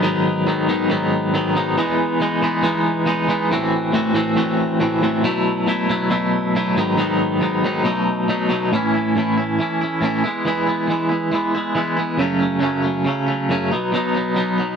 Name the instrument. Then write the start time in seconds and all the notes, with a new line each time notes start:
clean electric guitar
0.03 G#2 D#3 F#3 B3 D#4
0.46 G#2 D#3 F#3 B3 D#4
0.67 G#2 D#3 F#3 B3 D#4
0.89 G#2 D#3 F#3 B3 D#4
1.34 G#2 D#3 F#3 B3 D#4
1.55 G#2 D#3 F#3 B3 D#4
1.77 E3 G#3 B3 D#4
2.20 E3 G#3 B3 D#4
2.42 E3 G#3 B3 D#4
2.63 E3 G#3 B3 D#4
3.06 E3 G#3 B3 D#4
3.28 E3 G#3 B3 D#4
3.51 A2 E3 A3 C4 F#4
3.92 A2 E3 A3 C4 F#4
4.14 A2 E3 A3 C4 F#4
4.36 A2 E3 A3 C4 F#4
4.80 A2 E3 A3 C4 F#4
5.02 A2 E3 A3 C4 F#4
5.23 B2 F#3 A3 E4
5.67 B2 F#3 A3 E4
5.90 B2 F#3 A3 E4
6.10 B2 F#3 A3 E4
6.55 B2 F#3 A3 E4
6.76 G#2 D#3 F#3 B3 D#4
6.97 G#2 D#3 F#3 B3 D#4
7.40 G#2 D#3 F#3 B3 D#4
7.64 G#2 D#3 F#3 B3 D#4
7.84 B2 F#3 A3 D#4
8.28 B2 F#3 A3 D#4
8.49 B2 F#3 A3 D#4
8.72 A2 E3 A3 C#4 E4
8.94 A3 C#4 E4
9.16 A2 E3 A3 C#4 E4
9.37 A3 C#4 E4
9.59 E3 A3 C#4 E4
9.81 A3 C#4 E4
10.01 A2 E3 A3 C#4
10.05 E4
10.24 E3 G#3 B3 E4
10.45 E3 G#3 B3 E4
10.67 G#3 B3 E4
10.88 E3 G#3 B3 E4
11.09 G#3 B3 E4
11.32 E3 G#3 B3 E4
11.54 G#3 B3 E4
11.75 E3 G#3 B3 E4
11.97 G#3 B3 E4
12.18 F#2 C#3 F#3 A3 C#4
12.39 F#3 A3 C#4
12.60 F#2 C#3 F#3 A3 C#4
12.82 F#3 A3 C#4
13.05 C#3 F#3 A3 C#4
13.26 F#3 A3 C#4
13.49 F#2 C#3 F#3 A3 C#4
13.71 B2 F#3 B3 D#4
13.92 B2 F#3 B3 D#4
14.15 F#3 B3 D#4
14.35 B2 F#3 B3 D#4
14.58 F#3 B3 D#4